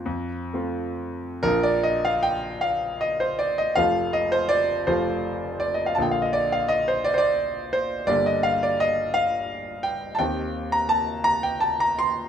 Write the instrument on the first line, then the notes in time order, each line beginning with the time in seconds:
grand piano
Already playing: C5
0.06 F2
0.54 A3 C4 F4
1.43 A#1 F3 D4 F4 A#4
1.63 D5
1.83 D#5
2.05 F5
2.23 G5
2.61 F5
3.01 D#5
3.20 C5
3.39 D5
3.58 D#5
3.75 F1 F3 A3 F4 F5
4.13 D#5
4.32 C5
4.49 D5
4.87 F1 F3 A3 F4 C5
5.60 D5
5.74 D#5
5.86 F5
5.95 A#1 D3 A#3 A5
5.99 F4 G5
6.11 F5
6.22 D#5
6.33 D5
6.52 F5
6.69 D#5
6.88 C5
7.04 D5
7.14 C5 D5
7.73 C5
8.07 G1 D3 A#3 G4 D5
8.26 D#5
8.43 F5
8.63 D5
8.80 D#5
9.14 F5
9.83 G5
10.15 G5 A5
10.19 D#2 D#3 C4 G4
10.72 A#5
10.89 A5
11.24 A#5
11.43 G5
11.60 A5
11.80 A#5
11.99 C6